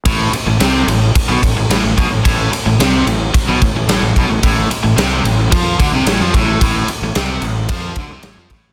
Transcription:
<<
  \new Staff \with { instrumentName = "Overdriven electric guitar" } { \clef bass \time 4/4 \key a \minor \tempo 4 = 110 a,8 r16 a,16 c8 a,8 r16 b,16 a,16 a,16 a,16 a,16 b,16 a,16 | a,8 r16 a,16 c8 a,8 r16 b,16 a,16 a,16 a,16 a,16 b,16 a,16 | a,8 r16 a,16 c8 a,8 f8 d16 c16 a,16 f16 a,8 | a,8 r16 a,16 c8 a,8 f8 d16 c16 a,16 f16 a,8 | }
  \new Staff \with { instrumentName = "Fingered electric bass" } { \clef bass \time 4/4 \key a \minor a,,8 r16 a,,16 c,8 a,,8 r16 b,,16 a,,16 a,,16 a,,16 a,,16 b,,16 a,,16 | a,,8 r16 a,,16 c,8 a,,8 r16 b,,16 a,,16 a,,16 a,,16 a,,16 b,,16 a,,16 | a,,8 r16 a,,16 c,8 a,,8 f,8 d,16 c,16 a,,16 f,16 a,,8 | a,,8 r16 a,,16 c,8 a,,8 f,8 d,16 c,16 a,,16 f,16 a,,8 | }
  \new DrumStaff \with { instrumentName = "Drums" } \drummode { \time 4/4 <bd cymr>8 cymr8 <cymr sn>8 cymr8 <bd cymr>8 <bd cymr>8 <cymr sn>8 <bd cymr>8 | <bd cymr>8 cymr8 <cymr sn>8 cymr8 <bd cymr>8 <bd cymr>8 <cymr sn>8 <bd cymr>8 | <bd cymr>8 cymr8 <cymr sn>8 cymr8 <bd cymr>8 <bd cymr>8 <cymr sn>8 <bd cymr>8 | <bd cymr>8 cymr8 <cymr sn>8 cymr8 <bd cymr>8 <bd cymr>8 <cymr sn>8 <bd cymr>8 | }
>>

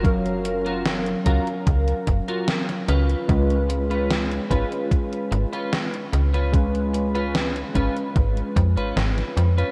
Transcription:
<<
  \new Staff \with { instrumentName = "Clean electric guitar" } { \time 4/4 \key cis \mixolydian \tempo 4 = 74 r8. <eis' fis' ais'>16 r8 <eis' fis' ais'>16 r4 <eis' fis' ais'>16 r8 <cis' eis' b'>8~ | <cis' eis' b'>16 r8 <cis' eis' b'>16 r8 <cis' eis' b'>16 r4 <cis' eis' b'>16 r8. <cis' eis' b'>16 | r8. <cis' eis' b'>16 r8 <cis' eis' b'>16 r4 <cis' eis' b'>16 r8. <cis' eis' b'>16 | }
  \new Staff \with { instrumentName = "Synth keys" } { \time 4/4 \key cis \mixolydian <fis cis' ais' eis''>4. <fis cis' ais' eis''>2 r8 | <gis cis' eis' b'>4. <gis cis' eis' b'>2~ <gis cis' eis' b'>8 | <gis cis' eis' b'>4. <gis cis' eis' b'>2~ <gis cis' eis' b'>8 | }
  \new Staff \with { instrumentName = "FM bass" } { \clef bass \time 4/4 \key cis \mixolydian fis,,4~ fis,,16 r16 cis,16 r16 cis,16 r16 fis,,16 r8. cis,16 r16 | cis,4~ cis,16 r16 gis,,16 r8. gis,,16 r8. cis,8~ | cis,4~ cis,16 r16 gis,,16 r16 gis,,16 r16 eis,16 gis,,16 gis,,16 r16 eis,16 r16 | }
  \new DrumStaff \with { instrumentName = "Drums" } \drummode { \time 4/4 <hh bd>16 hh16 hh16 hh16 <hh sn>16 hh16 <hh bd>16 hh16 <hh bd>16 hh16 <hh bd>16 hh16 <hh sn>16 <hh sn>16 hh16 hh16 | <hh bd>16 hh16 hh16 hh16 <hh sn>16 hh16 <hh bd>16 hh16 <hh bd>16 hh16 hh16 hh16 <hh sn>16 hh16 hh16 hh16 | <hh bd>16 hh16 hh16 hh16 <hh sn>16 hh16 <hh bd>16 hh16 <hh bd>16 hh16 <hh bd>16 hh16 <hh sn>16 <hh sn>16 hh16 hh16 | }
>>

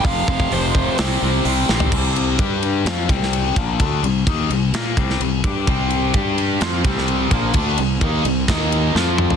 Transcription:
<<
  \new Staff \with { instrumentName = "Lead electric guitar" } { \time 4/4 \key c \minor \tempo 4 = 128 f''8 f''8 c''4 r2 | r1 | r1 | r1 |
r1 | }
  \new Staff \with { instrumentName = "Overdriven electric guitar" } { \clef bass \time 4/4 \key c \minor <f, c f>8 <f, c f>8 <f, c f>8 <f, c f>8 <c g c'>8 <c g c'>8 <c g c'>8 <c g c'>8 | <c g c'>4 <g d' g'>4 <f c' f'>8 <c g c'>4 <bes, f bes>8 | <d a d'>8 <c g>8 <ees bes ees'>8 <c g>8 <bes f' bes'>8 <c g c'>8 <c g>8 <g d' g'>8 | <c g c'>4 <g d' g'>4 <f c' f'>8 <c g c'>4 <bes, f bes>8 |
<d a d'>8 <c g>8 <ees bes ees'>8 <c g>8 <ees bes ees'>4 <f c' f'>4 | }
  \new Staff \with { instrumentName = "Overdriven electric guitar" } { \clef bass \time 4/4 \key c \minor <f, c f>8 <f, c f>8 <f, c f>8 <f, c f>8 <c g c'>8 <c g c'>8 <c g c'>8 <c g c'>8 | r1 | r1 | <c g c'>4 <g d' g'>4 <f c' f'>8 <c g c'>4 <bes, f bes>8 |
<d a d'>8 <c g>8 <ees bes ees'>8 <c g>8 <ees bes ees'>4 <f c' f'>4 | }
  \new Staff \with { instrumentName = "Fingered electric bass" } { \clef bass \time 4/4 \key c \minor f,,8 f,,8 f,,4 c,8 c,8 c,8 bes,,8 | c,4 g,4 f,8 c,4 bes,,8 | d,8 c,8 ees,8 c,8 bes,8 c,8 c,8 g,8 | c,4 g,4 f,8 c,4 bes,,8 |
d,8 c,8 ees,8 c,8 ees,4 f,4 | }
  \new DrumStaff \with { instrumentName = "Drums" } \drummode { \time 4/4 <hho bd>8 bd16 bd16 hho8 bd8 <hho sn>4 hho8 sn16 tomfh16 | <cymc bd>8 cymr8 <bd cymr>8 cymr8 <cymr sn>8 <bd cymr>16 sn16 cymr8 <bd cymr>8 | <bd cymr>8 cymr8 <bd cymr>8 cymr8 <cymr sn>8 <bd cymr>16 sn16 cymr8 <bd cymr>8 | <bd cymr>8 cymr8 <bd cymr>8 cymr8 <cymr sn>8 <bd cymr>16 sn16 cymr8 <bd cymr>8 |
<bd cymr>8 cymr8 <bd cymr>8 cymr8 <bd cymr sn>8 cymr8 sn8 toml16 tomfh16 | }
>>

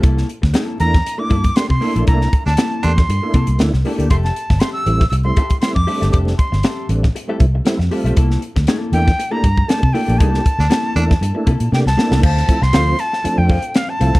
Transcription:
<<
  \new Staff \with { instrumentName = "Flute" } { \time 4/4 \key c \mixolydian \tempo 4 = 118 r4. bes''8. d'''8. c'''16 c'''8. | bes''8. a''8. c'''4. r4 | c'''16 a''8. c'''16 e'''8. e'''16 c'''8. c'''16 d'''8. | d'''8 c'''4 r2 r8 |
r4. g''8. bes''8. a''8 g''8 | a''2. g''16 a''8. | a''8. c'''8. a''8. g''8. f''16 a''8. | }
  \new Staff \with { instrumentName = "Hollow-body jazz guitar" } { \time 4/4 \key c \mixolydian <bes e' a'>8 r8 <bes e' a'>8 r4 <bes e' a'>16 r8. <bes e' a'>16 <bes e' a'>16 | <bes e' a'>8 r8 <bes e' a'>8 r4 <bes e' a'>16 r8. <bes e' a'>16 <bes e' a'>16 | <g' a' e''>8 r8 <g' a' e''>8 r4 <g' a' e''>16 r8. <g' a' e''>16 <g' a' e''>16 | <g' a' e''>8 r8 <g' a' e''>8 r8. <g' a' e''>16 r4 <g' a' e''>16 <g' a' e''>16 |
<bes e' a'>8 r8 <bes e' a'>8 r8. <bes e' a'>16 r4 <bes e' a'>16 <bes e' a'>16 | <bes e' a'>8 r8 <bes e' a'>8 r4 <bes e' a'>16 r8. <bes e' a'>16 <bes e' a'>16 | <a' c'' f''>8 r8 <a' c'' f''>8 r4 <a' c'' f''>16 r8. <a' c'' f''>16 <a' c'' f''>16 | }
  \new Staff \with { instrumentName = "Baritone saxophone" } { \time 4/4 \key c \mixolydian r1 | r8. d'16 r8 d'16 r2 r16 | r1 | r1 |
r1 | r8. d'16 r8 d'16 r2 r16 | r1 | }
  \new Staff \with { instrumentName = "Tonewheel organ" } { \time 4/4 \key c \mixolydian r4. <a bes d' e'>16 r8 <a bes d' e'>16 r8 <a bes d' g'>16 r16 <a bes d' e'>8~ | <a bes d' e'>8 r4 <a bes d' g'>16 r8 <a bes d' e'>16 r8 <a bes d' e'>16 r16 <a bes d' g'>8 | r4. <g a c' e'>16 r8 <g a c' e'>16 r8 <g a c' e'>16 r16 <g a c' d'>8~ | <g a c' d'>8 r4 <g a c' d'>16 r8 <g a c' e'>16 r8 <g a c' e'>16 r16 <g a c' f'>8 |
r4. <a bes d' e'>16 r8 <a bes d' g'>16 r8 <a bes d' g'>16 r16 <a bes d' fis' g'>8~ | <a bes d' fis' g'>8 r4 <a bes d' e'>16 r8 <a bes d' e'>16 r8 <a bes d' g'>16 r16 <a bes d' e'>8 | r8 <f a c' e'>16 r16 <f a c' f'>8 r8 <f a c' d'>8. r8. <f a c' e'>8 | }
  \new Staff \with { instrumentName = "Fingered electric bass" } { \clef bass \time 4/4 \key c \mixolydian c,8 r16 d,16 r8 e,8 r8 g,8 r16 c16 r16 bes,,16 | c,8 r16 d,16 r8 e,8 g,16 r16 c16 c,16 d,16 c,16 r16 d,16 | f,,8 r16 g,,16 r8 a,,8 c,8 r8. f,16 r16 g,,16 | f,,8 r16 g,,16 r8 a,,8 r8 c,8 r16 f,16 r16 b,,16 |
c,8 r16 d,16 r8 e,8 r8 g,8 r16 c16 r16 bes,,16 | c,8 r16 d,16 r8 e,8 g,16 r16 c16 bes,16 c16 c,16 r16 c,16 | d,8 r16 c,16 d,8 r8. f,8 r8. c,16 c,16 | }
  \new DrumStaff \with { instrumentName = "Drums" } \drummode { \time 4/4 <hh bd>16 sn16 hh16 <bd sn>16 <hh sn>8 hh16 <bd sn>16 hh8 <hh bd>16 <hh bd>16 <hh sn>16 bd16 hho16 hh16 | <hh bd>16 sn16 <hh bd>16 sn16 <hh sn>8 hh16 <bd sn>16 hh8 <hh bd>16 hh16 <hh sn>16 sn16 hho16 hh16 | <hh bd>16 sn16 hh16 <bd sn>16 <hh sn>8 hh16 <bd sn>16 hh8 <hh bd>16 <hh bd>16 <hh sn>16 bd16 hho16 <hh sn>16 | <hh bd>16 sn16 <hh bd>16 sn16 <hh sn>8 hh16 <bd sn>16 hh8 <hh bd>8 <hh sn>16 sn16 hho16 hh16 |
<hh bd>16 sn16 hh16 <bd sn>16 <hh sn>8 hh16 <bd sn>16 hh8 <hh bd>16 bd16 <hh sn>16 bd16 hho16 hh16 | <hh bd>16 sn16 <hh bd>16 sn16 <hh sn>8 hh16 <bd sn>16 hh8 <hh bd>16 hh16 sn16 sn16 sn16 sn16 | <cymc bd>16 sn16 <hh bd>16 sn16 <hh sn>8 hh16 sn16 hh8 <hho bd>16 hh16 <hh sn>8 hh16 <hh bd sn>16 | }
>>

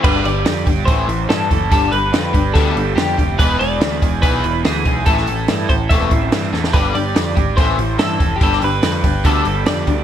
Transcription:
<<
  \new Staff \with { instrumentName = "Clean electric guitar" } { \time 4/4 \key g \mixolydian \tempo 4 = 143 b'8 d''4 r8 c''4 a'4 | a'8 b'4. a'4 g'8. r16 | b'8 d''4. b'4 gis'4 | a'4. c''8 e''4. r8 |
b'8 d''4 r8 c''4 a'8.~ a'32 g'32 | a'8 b'4. a'4 d''4 | }
  \new Staff \with { instrumentName = "Overdriven electric guitar" } { \time 4/4 \key g \mixolydian g,8 g'8 d'8 g'8 a,8 e8 e'8 a'8 | g,8 g'8 d'8 g'8 b8 g8 d'8 g'8 | e,8 gis'8 e'8 gis'8 b8 e8 e'8 gis'8 | a,8 a'8 e'8 a'8 c'8 e8 e'8 a'8 |
g,8 g'8 d'8 g'8 a,8 e8 e'8 a'8 | g,8 g'8 d'8 g'8 b8 g8 d'8 g'8 | }
  \new Staff \with { instrumentName = "Overdriven electric guitar" } { \clef bass \time 4/4 \key g \mixolydian <g, d g>8 <g, d>8 <g, d>8 <g, d>8 <a, e a>8 <a, e>8 <a, e>8 <a, e>8 | <g, d g>8 <g, d>8 <g, d>8 <g, d>8 <g, d g>8 <g, d>8 <g, d>8 <g, d>8 | <e gis b>8 <e gis>8 <e gis>8 <e gis>8 <e gis b>8 <e gis>8 <e gis>8 <e gis>8 | <a, e a>8 <a, e>8 <a, e>8 <a, e>8 <a, e a>8 <a, e>8 <a, e>8 <a, e>8 |
<g, d g>8 <g, d>8 <g, d>8 <g, d>8 <a, e a>8 <a, e>8 <a, e>8 <a, e>8 | <g, d g>8 <g, d>8 <g, d>8 <g, d>8 <g, d g>8 <g, d>8 <g, d>8 <g, d>8 | }
  \new Staff \with { instrumentName = "Picked electric bass" } { \clef bass \time 4/4 \key g \mixolydian g,,8 g,,8 f,8 g,,8 a,,8 a,,8 g,8 fis,,8 | g,,8 g,,8 f,8 g,,8 d,8 g,,8 f,8 f,,8 | e,,8 e,,8 d,8 e,,8 b,,8 e,,8 d,8 b,,8 | a,,8 a,,8 g,8 a,,8 e,,8 a,,8 g,8 e,8 |
g,,8 g,,8 f,8 gis,,8 a,,8 a,,8 g,8 f,,8 | g,,8 g,,8 f,8 g,,8 d,8 g,,8 f,8 d,8 | }
  \new DrumStaff \with { instrumentName = "Drums" } \drummode { \time 4/4 <cymc bd>8 hho8 <hho sn>8 <hho bd>8 <hho bd>8 hho8 <hho sn>8 <hho bd>8 | <hho bd>8 hho8 <hho sn>8 <hho bd>8 <hho bd>8 hho8 <hho sn>8 <hho bd>8 | <hho bd>8 hho8 <hho sn>8 <hho bd>8 <hho bd>8 hho8 <hho sn>8 <hho bd>8 | <hho bd>16 sn16 hho8 <hho sn>8 <hho bd>8 <hho bd>8 <hho bd>8 <hho sn>8 sn16 sn16 |
<hho bd>8 hho8 <hho sn>8 <hho bd>8 <hho bd>8 hho8 <hho sn>8 <hho bd>8 | <hho bd>16 sn16 hho8 <hho sn>8 <hho bd>8 <hho bd>8 hho8 <hho sn>8 <hho bd>8 | }
>>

